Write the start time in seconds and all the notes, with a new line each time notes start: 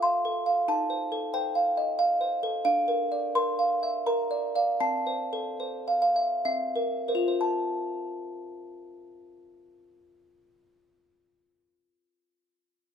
Already playing: F4
0.02 F5 C6
0.25 A4
0.46 F5
0.68 D#4 A5
0.90 C5
1.12 A4
1.34 C5 G5
1.55 F5
1.77 D#5
1.99 F5
2.21 C5
2.43 A4
2.65 D4 F5
2.88 A#4
3.12 D5
3.35 A#4 C6
3.59 F5
3.83 E5
4.06 A#4 A#5
4.31 D5
4.55 D5 F5
4.80 C4 A5
5.07 C5
5.33 A4
5.60 C5
5.88 F5
6.02 F5
6.16 E5
6.45 C4 E5
6.76 A#4
7.08 A#4 C5
7.15 F4
7.28 C5
7.41 A5